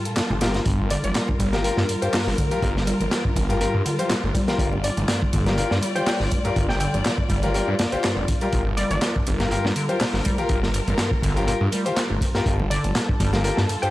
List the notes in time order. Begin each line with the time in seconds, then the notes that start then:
Already playing: G3 F4 A4
0.05 A#2, closed hi-hat
0.16 G2, snare, clap, closed hi-hat
0.30 G1 A#2, muted conga, high conga, low conga
0.41 A#2 F4 G4 A#4, snare, closed hi-hat, ride
0.54 G2, snare, closed hi-hat
0.65 G1 G2 A#4, kick, closed hi-hat
0.80 A#3
0.90 D3 D5, closed hi-hat, ride, muted conga
1.03 G1 G3 D5, closed hi-hat, high conga, low conga
1.15 A#2, snare, clap, closed hi-hat
1.28 G2, kick, muted conga
1.39 G1 G3, kick, closed hi-hat, ride, low conga
1.53 D3 F4 G4 A#4, snare, closed hi-hat, high conga
1.64 F4 G4 A#4, closed hi-hat
1.77 G2, snare, muted conga
1.89 G2, closed hi-hat, ride
2.02 G2 F4 G4 C5, closed hi-hat
2.13 G2, snare, clap, closed hi-hat, open hi-hat, muted conga
2.27 G1 A#3, snare
2.37 D3, kick, closed hi-hat, ride, high conga
2.51 G3 F4 G4 A#4, closed hi-hat
2.62 G1 A#2, kick, closed hi-hat, muted conga
2.76 G2, snare
2.87 G3, closed hi-hat, ride
3.00 G1 D3, closed hi-hat, muted conga, high conga, low conga
3.11 snare, clap, closed hi-hat
3.25 G2, kick
3.36 G1 G2, kick, closed hi-hat, ride, low conga
3.49 G2 F4 G4 A#4, closed hi-hat, muted conga, high conga
3.61 G2 F4 G4 A#4, closed hi-hat
3.74 G2 A#3
3.85 D3, closed hi-hat, ride, muted conga, high conga
3.99 G3 F4 G4 C5, closed hi-hat
4.10 A#2, snare, clap, closed hi-hat
4.23 G1 G2, high conga
4.34 G3, kick, closed hi-hat, ride, muted conga
4.48 D3 F4 G4 A#4, snare, closed hi-hat
4.58 G1 D5, kick, closed hi-hat
4.72 G2, muted conga
4.84 G2 D5, closed hi-hat, ride
4.97 G1 G2, closed hi-hat, high conga, low conga
5.08 G2, snare, clap, closed hi-hat
5.22 A#3, kick, muted conga
5.33 G1 D3, kick, closed hi-hat, ride, low conga
5.46 G3 F4 G4 A#4, snare, closed hi-hat, high conga
5.57 A#2 F4 G4 A#4, closed hi-hat, muted conga
5.71 G2, snare
5.82 G3, closed hi-hat, ride
5.95 D3 F4 G4 C5 G5, closed hi-hat
6.06 G5, snare, clap, closed hi-hat, open hi-hat, muted conga
6.20 G1 G2, snare
6.31 G2, kick, closed hi-hat, ride, high conga
6.45 G2 F4 G4 A#4, closed hi-hat, muted conga
6.56 G1 G2, kick, closed hi-hat
6.69 A#3 G5, snare
6.80 D3 G5, closed hi-hat, ride
6.94 G1 G3, closed hi-hat, muted conga, high conga, low conga
7.05 A#2, snare, clap, closed hi-hat
7.18 G2, kick
7.29 G1 G3, kick, closed hi-hat, ride, muted conga, low conga
7.43 D3 F4 G4 A#4, closed hi-hat, high conga
7.54 F4 G4 A#4, closed hi-hat
7.67 G2
7.79 G2, snare, closed hi-hat, ride, muted conga, high conga
7.92 G1 F4 G4 C5, closed hi-hat
8.04 G2, snare, clap, closed hi-hat
8.16 G1 F2, muted conga, high conga
8.28 G2, kick, closed hi-hat, ride
8.41 G3 F4 G4 A#4, closed hi-hat
8.53 G1 A#2 A#4, kick, closed hi-hat
8.66 G2
8.77 G3 D5, closed hi-hat, ride, muted conga
8.90 G1 D3 D5, closed hi-hat, high conga, low conga
9.02 snare, clap, closed hi-hat
9.16 G2, kick, muted conga
9.26 G1 G2, kick, closed hi-hat, ride, low conga
9.40 G2 F4 G4 A#4, snare, closed hi-hat, high conga
9.51 G2 F4 G4 A#4, closed hi-hat
9.64 G2 A#3, snare, muted conga
9.76 D3, closed hi-hat, ride
9.89 G3 F4 G4 C5, closed hi-hat
10.00 A#2, snare, clap, closed hi-hat, open hi-hat, muted conga
10.13 G1 G2, snare
10.25 G3, kick, closed hi-hat, ride, high conga
10.38 D3 F4 G4 A#4, closed hi-hat
10.49 G1, kick, closed hi-hat, muted conga
10.63 G2, snare
10.74 G2, closed hi-hat, ride
10.87 G1 G2, closed hi-hat, muted conga, high conga, low conga
10.98 G2, snare, clap, closed hi-hat
11.11 A#3, kick
11.22 G1 D3, kick, closed hi-hat, ride, low conga
11.36 G3 F4 G4 A#4, closed hi-hat, muted conga, high conga
11.48 A#2 F4 G4 A#4, closed hi-hat
11.61 G2
11.72 G3, closed hi-hat, ride, muted conga, high conga
11.85 D3 F4 G4 C5, closed hi-hat
11.96 snare, clap, closed hi-hat
12.10 G1 G2, high conga
12.21 G2, kick, closed hi-hat, ride, muted conga
12.35 G2 F4 G4 A#4, snare, closed hi-hat
12.46 G1 G2 A4, kick, closed hi-hat
12.59 A#3, muted conga
12.70 D3 D5, closed hi-hat, ride
12.84 G1 G3, closed hi-hat, high conga, low conga
12.95 A#2, snare, clap, closed hi-hat
13.09 G2, kick, muted conga
13.20 G1 G3, kick, closed hi-hat, ride, low conga
13.33 D3 F4 G4 A#4, snare, closed hi-hat, high conga
13.44 F4 G4 A#4, closed hi-hat, muted conga
13.57 G2, snare
13.69 G2, closed hi-hat, ride
13.82 G2 F4 G4 C5 G5, closed hi-hat